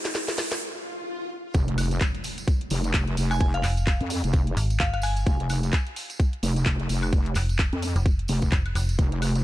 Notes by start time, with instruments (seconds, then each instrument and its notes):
Already playing: analog synth pad G#3 G4 C5, riser
0.05 snare, closed hi-hat
0.15 snare, closed hi-hat
0.28 snare
0.38 snare, open hi-hat
0.52 snare, closed hi-hat
0.61 swell
1.54 wobble bass F1, kick, closed hi-hat, tambourine, impact
1.68 closed hi-hat
1.78 open hi-hat, tambourine, high woodblock
1.91 closed hi-hat, tambourine
2.01 kick, clap, closed hi-hat, tambourine
2.15 closed hi-hat
2.24 open hi-hat, tambourine
2.38 closed hi-hat, tambourine
2.48 kick, closed hi-hat
2.61 closed hi-hat
2.70 wobble bass F1, open hi-hat, tambourine
2.84 closed hi-hat, tambourine
2.94 kick, clap, closed hi-hat, tambourine
3.07 closed hi-hat
3.17 wobble bass F1, open hi-hat, tambourine
3.31 synth bell G#5, tambourine, high woodblock
3.40 synth bell G#5, kick, closed hi-hat, tambourine
3.54 synth bell F5, closed hi-hat
3.64 fm bass F1, clap, open hi-hat, tambourine, high woodblock
3.77 closed hi-hat, tambourine
3.87 kick, clap, closed hi-hat, tambourine
4.01 wobble bass F2, closed hi-hat
4.10 open hi-hat, tambourine
4.24 wobble bass F1, closed hi-hat, tambourine
4.33 kick, closed hi-hat, tambourine
4.47 closed hi-hat
4.57 fm bass G#1, open hi-hat, tambourine
4.70 closed hi-hat, tambourine
4.80 fm bass G1, synth bell F5, kick, clap, closed hi-hat, tambourine
4.94 synth bell F5, closed hi-hat, high woodblock
5.02 synth bell G#5, open hi-hat, tambourine, high woodblock
5.16 closed hi-hat, tambourine
5.26 wobble bass F1, kick, closed hi-hat, tambourine
5.40 closed hi-hat
5.49 open hi-hat, tambourine, high woodblock
5.63 closed hi-hat, tambourine
5.73 kick, clap, closed hi-hat, tambourine
5.87 closed hi-hat
5.96 open hi-hat, tambourine
6.10 closed hi-hat, tambourine
6.20 kick, closed hi-hat
6.33 closed hi-hat
6.43 wobble bass F1, open hi-hat, tambourine
6.56 closed hi-hat, tambourine
6.66 kick, clap, closed hi-hat, tambourine
6.80 closed hi-hat
6.89 wobble bass F1, open hi-hat, tambourine
7.03 tambourine, high woodblock
7.13 kick, closed hi-hat, tambourine
7.26 closed hi-hat
7.35 fm bass F1, clap, open hi-hat, tambourine, high woodblock
7.49 closed hi-hat, tambourine
7.59 kick, clap, closed hi-hat
7.73 wobble bass F2, closed hi-hat
7.82 open hi-hat, tambourine
7.96 fm bass F1, closed hi-hat, tambourine
8.06 kick, closed hi-hat, tambourine
8.19 closed hi-hat
8.28 wobble bass F1, open hi-hat, tambourine
8.42 kick, closed hi-hat, tambourine
8.52 fm bass F1, kick, clap, closed hi-hat, tambourine
8.66 closed hi-hat, high woodblock
8.75 fm bass F1, open hi-hat, tambourine, high woodblock
8.89 closed hi-hat, tambourine
8.99 wobble bass F1, analog synth pad G#3 F4 C5, kick, closed hi-hat, tambourine
9.12 closed hi-hat
9.22 open hi-hat, tambourine, high woodblock
9.35 closed hi-hat, tambourine